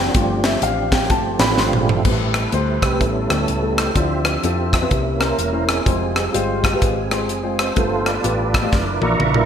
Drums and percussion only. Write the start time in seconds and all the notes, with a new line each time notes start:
0.14 kick, closed hi-hat
0.44 snare, closed hi-hat
0.62 closed hi-hat
0.92 kick, snare, closed hi-hat
1.10 kick, closed hi-hat
1.39 snare, closed hi-hat
1.57 snare
1.73 mid tom
1.89 floor tom
2.05 kick, crash
2.34 cross-stick, closed hi-hat
2.52 closed hi-hat
2.82 kick, cross-stick, closed hi-hat
3.01 kick, closed hi-hat
3.30 cross-stick, closed hi-hat
3.48 closed hi-hat
3.78 cross-stick, closed hi-hat
3.95 kick, closed hi-hat
4.25 cross-stick, closed hi-hat
4.43 closed hi-hat
4.73 kick, cross-stick, closed hi-hat
4.91 kick, closed hi-hat
5.20 cross-stick, closed hi-hat
5.39 closed hi-hat
5.69 cross-stick, closed hi-hat
5.86 kick, closed hi-hat
6.16 cross-stick, closed hi-hat
6.34 closed hi-hat
6.64 kick, cross-stick, closed hi-hat
6.82 kick, closed hi-hat
7.11 cross-stick, closed hi-hat
7.29 closed hi-hat
7.59 cross-stick, closed hi-hat
7.76 kick, closed hi-hat
8.06 cross-stick, closed hi-hat
8.24 closed hi-hat
8.54 kick, cross-stick, closed hi-hat
8.72 kick, snare
9.02 high tom
9.20 mid tom
9.34 mid tom